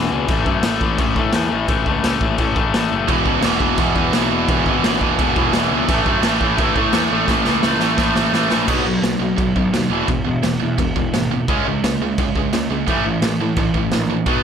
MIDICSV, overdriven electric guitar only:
0, 0, Header, 1, 2, 480
1, 0, Start_track
1, 0, Tempo, 349243
1, 426, Time_signature, 4, 2, 24, 8
1, 19833, End_track
2, 0, Start_track
2, 0, Title_t, "Overdriven electric guitar"
2, 0, Program_c, 0, 29
2, 0, Note_on_c, 0, 52, 115
2, 145, Note_on_c, 0, 40, 88
2, 149, Note_on_c, 0, 47, 98
2, 158, Note_off_c, 0, 52, 0
2, 164, Note_on_c, 0, 52, 102
2, 385, Note_off_c, 0, 47, 0
2, 390, Note_on_c, 0, 45, 93
2, 391, Note_off_c, 0, 40, 0
2, 393, Note_off_c, 0, 52, 0
2, 399, Note_on_c, 0, 52, 114
2, 414, Note_on_c, 0, 57, 112
2, 603, Note_off_c, 0, 45, 0
2, 608, Note_on_c, 0, 45, 89
2, 621, Note_off_c, 0, 52, 0
2, 627, Note_on_c, 0, 52, 113
2, 628, Note_off_c, 0, 57, 0
2, 634, Note_on_c, 0, 57, 107
2, 857, Note_off_c, 0, 45, 0
2, 863, Note_on_c, 0, 45, 100
2, 878, Note_off_c, 0, 52, 0
2, 879, Note_off_c, 0, 57, 0
2, 883, Note_on_c, 0, 52, 99
2, 885, Note_on_c, 0, 57, 123
2, 1118, Note_off_c, 0, 45, 0
2, 1124, Note_on_c, 0, 45, 91
2, 1129, Note_off_c, 0, 52, 0
2, 1134, Note_on_c, 0, 52, 92
2, 1137, Note_off_c, 0, 57, 0
2, 1142, Note_on_c, 0, 57, 86
2, 1324, Note_off_c, 0, 45, 0
2, 1340, Note_on_c, 0, 45, 102
2, 1342, Note_off_c, 0, 57, 0
2, 1352, Note_off_c, 0, 52, 0
2, 1357, Note_on_c, 0, 52, 120
2, 1359, Note_on_c, 0, 57, 120
2, 1586, Note_off_c, 0, 45, 0
2, 1595, Note_off_c, 0, 52, 0
2, 1597, Note_off_c, 0, 57, 0
2, 1600, Note_on_c, 0, 52, 103
2, 1603, Note_on_c, 0, 45, 94
2, 1613, Note_on_c, 0, 57, 108
2, 1805, Note_off_c, 0, 45, 0
2, 1820, Note_off_c, 0, 57, 0
2, 1821, Note_on_c, 0, 45, 98
2, 1825, Note_off_c, 0, 52, 0
2, 1831, Note_on_c, 0, 52, 109
2, 1836, Note_on_c, 0, 57, 110
2, 2039, Note_off_c, 0, 45, 0
2, 2054, Note_off_c, 0, 57, 0
2, 2056, Note_on_c, 0, 45, 85
2, 2063, Note_off_c, 0, 52, 0
2, 2068, Note_on_c, 0, 52, 91
2, 2071, Note_on_c, 0, 57, 94
2, 2303, Note_off_c, 0, 45, 0
2, 2307, Note_off_c, 0, 57, 0
2, 2315, Note_off_c, 0, 52, 0
2, 2320, Note_on_c, 0, 45, 92
2, 2320, Note_on_c, 0, 52, 92
2, 2323, Note_on_c, 0, 57, 115
2, 2545, Note_off_c, 0, 45, 0
2, 2558, Note_off_c, 0, 57, 0
2, 2561, Note_on_c, 0, 45, 96
2, 2562, Note_off_c, 0, 52, 0
2, 2568, Note_on_c, 0, 52, 96
2, 2575, Note_on_c, 0, 57, 111
2, 2778, Note_off_c, 0, 45, 0
2, 2794, Note_on_c, 0, 45, 107
2, 2799, Note_off_c, 0, 52, 0
2, 2804, Note_on_c, 0, 52, 102
2, 2812, Note_off_c, 0, 57, 0
2, 2829, Note_on_c, 0, 57, 106
2, 3027, Note_off_c, 0, 45, 0
2, 3042, Note_off_c, 0, 52, 0
2, 3043, Note_on_c, 0, 45, 79
2, 3046, Note_off_c, 0, 57, 0
2, 3047, Note_on_c, 0, 52, 88
2, 3063, Note_on_c, 0, 57, 94
2, 3256, Note_off_c, 0, 45, 0
2, 3273, Note_on_c, 0, 45, 101
2, 3276, Note_off_c, 0, 52, 0
2, 3280, Note_off_c, 0, 57, 0
2, 3281, Note_on_c, 0, 52, 103
2, 3296, Note_on_c, 0, 57, 112
2, 3501, Note_off_c, 0, 45, 0
2, 3517, Note_off_c, 0, 57, 0
2, 3518, Note_on_c, 0, 45, 89
2, 3527, Note_off_c, 0, 52, 0
2, 3532, Note_on_c, 0, 52, 98
2, 3534, Note_on_c, 0, 57, 98
2, 3725, Note_off_c, 0, 45, 0
2, 3741, Note_on_c, 0, 45, 92
2, 3742, Note_off_c, 0, 57, 0
2, 3755, Note_off_c, 0, 52, 0
2, 3759, Note_on_c, 0, 57, 110
2, 3760, Note_on_c, 0, 52, 91
2, 3974, Note_off_c, 0, 45, 0
2, 3989, Note_off_c, 0, 52, 0
2, 3991, Note_on_c, 0, 45, 85
2, 3992, Note_off_c, 0, 57, 0
2, 3995, Note_on_c, 0, 52, 87
2, 4008, Note_on_c, 0, 57, 95
2, 4235, Note_off_c, 0, 45, 0
2, 4244, Note_off_c, 0, 57, 0
2, 4255, Note_on_c, 0, 40, 94
2, 4255, Note_on_c, 0, 47, 113
2, 4269, Note_off_c, 0, 52, 0
2, 4274, Note_on_c, 0, 52, 122
2, 4477, Note_off_c, 0, 40, 0
2, 4478, Note_off_c, 0, 47, 0
2, 4483, Note_on_c, 0, 40, 96
2, 4494, Note_on_c, 0, 47, 101
2, 4499, Note_off_c, 0, 52, 0
2, 4505, Note_on_c, 0, 52, 106
2, 4707, Note_off_c, 0, 40, 0
2, 4713, Note_on_c, 0, 40, 98
2, 4714, Note_off_c, 0, 47, 0
2, 4730, Note_on_c, 0, 47, 111
2, 4734, Note_off_c, 0, 52, 0
2, 4739, Note_on_c, 0, 52, 114
2, 4951, Note_off_c, 0, 40, 0
2, 4957, Note_off_c, 0, 47, 0
2, 4957, Note_on_c, 0, 40, 94
2, 4970, Note_off_c, 0, 52, 0
2, 4973, Note_on_c, 0, 47, 89
2, 4976, Note_on_c, 0, 52, 92
2, 5208, Note_off_c, 0, 40, 0
2, 5211, Note_off_c, 0, 47, 0
2, 5224, Note_on_c, 0, 40, 103
2, 5225, Note_off_c, 0, 52, 0
2, 5227, Note_on_c, 0, 47, 115
2, 5231, Note_on_c, 0, 52, 124
2, 5438, Note_off_c, 0, 40, 0
2, 5446, Note_off_c, 0, 47, 0
2, 5454, Note_on_c, 0, 40, 82
2, 5463, Note_on_c, 0, 47, 95
2, 5468, Note_off_c, 0, 52, 0
2, 5474, Note_on_c, 0, 52, 96
2, 5670, Note_off_c, 0, 47, 0
2, 5671, Note_off_c, 0, 40, 0
2, 5686, Note_on_c, 0, 47, 110
2, 5688, Note_on_c, 0, 40, 101
2, 5705, Note_off_c, 0, 52, 0
2, 5711, Note_on_c, 0, 52, 107
2, 5909, Note_off_c, 0, 40, 0
2, 5921, Note_off_c, 0, 47, 0
2, 5926, Note_on_c, 0, 40, 96
2, 5938, Note_on_c, 0, 47, 91
2, 5939, Note_off_c, 0, 52, 0
2, 5945, Note_on_c, 0, 52, 91
2, 6161, Note_off_c, 0, 40, 0
2, 6161, Note_off_c, 0, 47, 0
2, 6177, Note_on_c, 0, 47, 96
2, 6178, Note_on_c, 0, 40, 105
2, 6187, Note_off_c, 0, 52, 0
2, 6193, Note_on_c, 0, 52, 95
2, 6406, Note_off_c, 0, 40, 0
2, 6411, Note_off_c, 0, 47, 0
2, 6422, Note_on_c, 0, 40, 95
2, 6428, Note_on_c, 0, 47, 106
2, 6431, Note_off_c, 0, 52, 0
2, 6437, Note_on_c, 0, 52, 106
2, 6639, Note_off_c, 0, 40, 0
2, 6655, Note_off_c, 0, 47, 0
2, 6656, Note_on_c, 0, 40, 109
2, 6671, Note_on_c, 0, 47, 100
2, 6675, Note_off_c, 0, 52, 0
2, 6680, Note_on_c, 0, 52, 127
2, 6867, Note_off_c, 0, 40, 0
2, 6875, Note_off_c, 0, 47, 0
2, 6884, Note_on_c, 0, 40, 98
2, 6892, Note_on_c, 0, 47, 98
2, 6894, Note_off_c, 0, 52, 0
2, 6899, Note_on_c, 0, 52, 102
2, 7119, Note_off_c, 0, 40, 0
2, 7125, Note_off_c, 0, 47, 0
2, 7135, Note_on_c, 0, 40, 108
2, 7142, Note_on_c, 0, 47, 118
2, 7151, Note_off_c, 0, 52, 0
2, 7157, Note_on_c, 0, 52, 118
2, 7366, Note_off_c, 0, 40, 0
2, 7382, Note_off_c, 0, 47, 0
2, 7382, Note_on_c, 0, 40, 99
2, 7398, Note_off_c, 0, 52, 0
2, 7398, Note_on_c, 0, 47, 98
2, 7404, Note_on_c, 0, 52, 116
2, 7607, Note_off_c, 0, 40, 0
2, 7620, Note_off_c, 0, 47, 0
2, 7624, Note_on_c, 0, 40, 93
2, 7637, Note_off_c, 0, 52, 0
2, 7637, Note_on_c, 0, 47, 108
2, 7642, Note_on_c, 0, 52, 107
2, 7854, Note_off_c, 0, 40, 0
2, 7871, Note_off_c, 0, 47, 0
2, 7871, Note_on_c, 0, 40, 96
2, 7888, Note_on_c, 0, 47, 105
2, 7894, Note_off_c, 0, 52, 0
2, 7900, Note_on_c, 0, 52, 98
2, 8095, Note_off_c, 0, 40, 0
2, 8103, Note_off_c, 0, 47, 0
2, 8119, Note_on_c, 0, 45, 95
2, 8124, Note_off_c, 0, 52, 0
2, 8129, Note_on_c, 0, 52, 101
2, 8131, Note_on_c, 0, 57, 114
2, 8361, Note_off_c, 0, 45, 0
2, 8366, Note_on_c, 0, 45, 93
2, 8377, Note_off_c, 0, 52, 0
2, 8382, Note_on_c, 0, 52, 101
2, 8383, Note_off_c, 0, 57, 0
2, 8388, Note_on_c, 0, 57, 105
2, 8592, Note_off_c, 0, 52, 0
2, 8593, Note_off_c, 0, 45, 0
2, 8597, Note_on_c, 0, 52, 106
2, 8599, Note_on_c, 0, 45, 104
2, 8609, Note_off_c, 0, 57, 0
2, 8615, Note_on_c, 0, 57, 120
2, 8824, Note_off_c, 0, 45, 0
2, 8829, Note_on_c, 0, 45, 84
2, 8838, Note_off_c, 0, 57, 0
2, 8840, Note_off_c, 0, 52, 0
2, 8844, Note_on_c, 0, 57, 100
2, 8845, Note_on_c, 0, 52, 96
2, 9054, Note_off_c, 0, 45, 0
2, 9071, Note_on_c, 0, 45, 104
2, 9073, Note_off_c, 0, 52, 0
2, 9078, Note_off_c, 0, 57, 0
2, 9089, Note_on_c, 0, 52, 111
2, 9095, Note_on_c, 0, 57, 117
2, 9294, Note_off_c, 0, 45, 0
2, 9307, Note_off_c, 0, 52, 0
2, 9310, Note_on_c, 0, 45, 83
2, 9313, Note_off_c, 0, 57, 0
2, 9324, Note_on_c, 0, 52, 102
2, 9329, Note_on_c, 0, 57, 100
2, 9517, Note_off_c, 0, 45, 0
2, 9529, Note_off_c, 0, 52, 0
2, 9533, Note_on_c, 0, 45, 98
2, 9535, Note_off_c, 0, 57, 0
2, 9545, Note_on_c, 0, 52, 96
2, 9552, Note_on_c, 0, 57, 109
2, 9765, Note_off_c, 0, 45, 0
2, 9779, Note_off_c, 0, 52, 0
2, 9781, Note_on_c, 0, 45, 94
2, 9783, Note_off_c, 0, 57, 0
2, 9795, Note_on_c, 0, 52, 92
2, 9800, Note_on_c, 0, 57, 107
2, 10008, Note_off_c, 0, 45, 0
2, 10020, Note_off_c, 0, 52, 0
2, 10024, Note_on_c, 0, 45, 102
2, 10033, Note_off_c, 0, 57, 0
2, 10037, Note_on_c, 0, 52, 97
2, 10050, Note_on_c, 0, 57, 119
2, 10242, Note_off_c, 0, 45, 0
2, 10255, Note_off_c, 0, 52, 0
2, 10258, Note_on_c, 0, 45, 90
2, 10268, Note_off_c, 0, 57, 0
2, 10271, Note_on_c, 0, 52, 95
2, 10285, Note_on_c, 0, 57, 104
2, 10482, Note_off_c, 0, 45, 0
2, 10487, Note_off_c, 0, 52, 0
2, 10498, Note_on_c, 0, 45, 103
2, 10499, Note_off_c, 0, 57, 0
2, 10503, Note_on_c, 0, 52, 116
2, 10516, Note_on_c, 0, 57, 106
2, 10722, Note_off_c, 0, 45, 0
2, 10735, Note_off_c, 0, 52, 0
2, 10737, Note_off_c, 0, 57, 0
2, 10739, Note_on_c, 0, 45, 89
2, 10752, Note_on_c, 0, 52, 96
2, 10753, Note_on_c, 0, 57, 86
2, 10984, Note_off_c, 0, 45, 0
2, 10993, Note_off_c, 0, 52, 0
2, 11001, Note_on_c, 0, 45, 112
2, 11005, Note_off_c, 0, 57, 0
2, 11010, Note_on_c, 0, 52, 108
2, 11022, Note_on_c, 0, 57, 122
2, 11217, Note_off_c, 0, 45, 0
2, 11229, Note_off_c, 0, 57, 0
2, 11234, Note_off_c, 0, 52, 0
2, 11234, Note_on_c, 0, 45, 86
2, 11246, Note_on_c, 0, 57, 103
2, 11250, Note_on_c, 0, 52, 93
2, 11449, Note_off_c, 0, 45, 0
2, 11461, Note_off_c, 0, 52, 0
2, 11466, Note_on_c, 0, 45, 102
2, 11473, Note_off_c, 0, 57, 0
2, 11477, Note_on_c, 0, 52, 105
2, 11489, Note_on_c, 0, 57, 98
2, 11697, Note_off_c, 0, 45, 0
2, 11714, Note_on_c, 0, 45, 90
2, 11715, Note_off_c, 0, 52, 0
2, 11721, Note_off_c, 0, 57, 0
2, 11731, Note_on_c, 0, 52, 92
2, 11738, Note_on_c, 0, 57, 101
2, 11935, Note_off_c, 0, 45, 0
2, 11944, Note_off_c, 0, 52, 0
2, 11947, Note_off_c, 0, 57, 0
2, 11947, Note_on_c, 0, 47, 92
2, 11950, Note_on_c, 0, 54, 91
2, 11969, Note_on_c, 0, 59, 94
2, 12159, Note_off_c, 0, 47, 0
2, 12173, Note_off_c, 0, 54, 0
2, 12176, Note_on_c, 0, 47, 80
2, 12183, Note_off_c, 0, 59, 0
2, 12192, Note_on_c, 0, 54, 93
2, 12396, Note_off_c, 0, 47, 0
2, 12404, Note_off_c, 0, 54, 0
2, 12420, Note_on_c, 0, 47, 81
2, 12420, Note_on_c, 0, 54, 88
2, 12638, Note_off_c, 0, 47, 0
2, 12638, Note_off_c, 0, 54, 0
2, 12667, Note_on_c, 0, 47, 69
2, 12671, Note_on_c, 0, 54, 78
2, 12871, Note_off_c, 0, 47, 0
2, 12884, Note_off_c, 0, 54, 0
2, 12888, Note_on_c, 0, 47, 82
2, 12898, Note_on_c, 0, 54, 94
2, 13112, Note_off_c, 0, 47, 0
2, 13118, Note_off_c, 0, 54, 0
2, 13145, Note_on_c, 0, 47, 75
2, 13151, Note_on_c, 0, 54, 89
2, 13359, Note_off_c, 0, 54, 0
2, 13361, Note_off_c, 0, 47, 0
2, 13376, Note_on_c, 0, 54, 83
2, 13384, Note_on_c, 0, 47, 74
2, 13597, Note_off_c, 0, 54, 0
2, 13600, Note_off_c, 0, 47, 0
2, 13627, Note_on_c, 0, 40, 95
2, 13634, Note_on_c, 0, 47, 93
2, 13643, Note_on_c, 0, 52, 101
2, 13852, Note_off_c, 0, 40, 0
2, 13855, Note_off_c, 0, 47, 0
2, 13860, Note_off_c, 0, 52, 0
2, 13867, Note_on_c, 0, 40, 83
2, 13877, Note_on_c, 0, 47, 79
2, 14082, Note_off_c, 0, 40, 0
2, 14087, Note_off_c, 0, 47, 0
2, 14109, Note_on_c, 0, 40, 74
2, 14119, Note_on_c, 0, 47, 80
2, 14317, Note_off_c, 0, 40, 0
2, 14324, Note_off_c, 0, 47, 0
2, 14334, Note_on_c, 0, 40, 83
2, 14340, Note_on_c, 0, 47, 92
2, 14555, Note_off_c, 0, 40, 0
2, 14559, Note_off_c, 0, 47, 0
2, 14603, Note_on_c, 0, 40, 67
2, 14605, Note_on_c, 0, 47, 79
2, 14810, Note_off_c, 0, 40, 0
2, 14811, Note_off_c, 0, 47, 0
2, 14832, Note_on_c, 0, 47, 90
2, 14833, Note_on_c, 0, 40, 76
2, 15045, Note_off_c, 0, 40, 0
2, 15045, Note_off_c, 0, 47, 0
2, 15073, Note_on_c, 0, 40, 70
2, 15081, Note_on_c, 0, 47, 82
2, 15285, Note_off_c, 0, 40, 0
2, 15289, Note_off_c, 0, 47, 0
2, 15301, Note_on_c, 0, 40, 68
2, 15305, Note_on_c, 0, 47, 84
2, 15519, Note_off_c, 0, 40, 0
2, 15521, Note_off_c, 0, 47, 0
2, 15538, Note_on_c, 0, 40, 74
2, 15547, Note_on_c, 0, 47, 77
2, 15758, Note_off_c, 0, 40, 0
2, 15762, Note_off_c, 0, 47, 0
2, 15782, Note_on_c, 0, 49, 89
2, 15797, Note_on_c, 0, 56, 98
2, 15809, Note_on_c, 0, 61, 95
2, 16009, Note_off_c, 0, 49, 0
2, 16017, Note_off_c, 0, 56, 0
2, 16023, Note_off_c, 0, 61, 0
2, 16033, Note_on_c, 0, 49, 76
2, 16046, Note_on_c, 0, 56, 90
2, 16245, Note_off_c, 0, 49, 0
2, 16252, Note_off_c, 0, 56, 0
2, 16269, Note_on_c, 0, 49, 84
2, 16271, Note_on_c, 0, 56, 91
2, 16483, Note_off_c, 0, 49, 0
2, 16484, Note_off_c, 0, 56, 0
2, 16513, Note_on_c, 0, 49, 76
2, 16516, Note_on_c, 0, 56, 79
2, 16725, Note_off_c, 0, 49, 0
2, 16726, Note_off_c, 0, 56, 0
2, 16753, Note_on_c, 0, 49, 88
2, 16756, Note_on_c, 0, 56, 94
2, 16965, Note_off_c, 0, 49, 0
2, 16966, Note_off_c, 0, 56, 0
2, 17004, Note_on_c, 0, 56, 82
2, 17007, Note_on_c, 0, 49, 72
2, 17206, Note_off_c, 0, 49, 0
2, 17210, Note_off_c, 0, 56, 0
2, 17223, Note_on_c, 0, 49, 80
2, 17229, Note_on_c, 0, 56, 77
2, 17440, Note_off_c, 0, 49, 0
2, 17443, Note_off_c, 0, 56, 0
2, 17478, Note_on_c, 0, 49, 81
2, 17485, Note_on_c, 0, 56, 86
2, 17687, Note_off_c, 0, 49, 0
2, 17691, Note_off_c, 0, 56, 0
2, 17711, Note_on_c, 0, 45, 94
2, 17724, Note_on_c, 0, 57, 85
2, 17726, Note_on_c, 0, 52, 99
2, 17928, Note_off_c, 0, 52, 0
2, 17933, Note_off_c, 0, 45, 0
2, 17940, Note_off_c, 0, 57, 0
2, 17945, Note_on_c, 0, 52, 91
2, 17947, Note_on_c, 0, 45, 83
2, 18161, Note_off_c, 0, 52, 0
2, 18162, Note_off_c, 0, 45, 0
2, 18207, Note_on_c, 0, 45, 79
2, 18216, Note_on_c, 0, 52, 91
2, 18412, Note_off_c, 0, 45, 0
2, 18416, Note_off_c, 0, 52, 0
2, 18430, Note_on_c, 0, 45, 73
2, 18436, Note_on_c, 0, 52, 79
2, 18643, Note_off_c, 0, 45, 0
2, 18646, Note_off_c, 0, 52, 0
2, 18668, Note_on_c, 0, 45, 90
2, 18678, Note_on_c, 0, 52, 90
2, 18882, Note_off_c, 0, 45, 0
2, 18887, Note_off_c, 0, 52, 0
2, 18929, Note_on_c, 0, 45, 64
2, 18935, Note_on_c, 0, 52, 74
2, 19133, Note_off_c, 0, 45, 0
2, 19135, Note_off_c, 0, 52, 0
2, 19153, Note_on_c, 0, 45, 72
2, 19161, Note_on_c, 0, 52, 82
2, 19364, Note_off_c, 0, 45, 0
2, 19368, Note_off_c, 0, 52, 0
2, 19384, Note_on_c, 0, 45, 68
2, 19389, Note_on_c, 0, 52, 73
2, 19600, Note_off_c, 0, 45, 0
2, 19602, Note_off_c, 0, 52, 0
2, 19611, Note_on_c, 0, 47, 91
2, 19622, Note_on_c, 0, 54, 89
2, 19632, Note_on_c, 0, 59, 102
2, 19833, Note_off_c, 0, 47, 0
2, 19833, Note_off_c, 0, 54, 0
2, 19833, Note_off_c, 0, 59, 0
2, 19833, End_track
0, 0, End_of_file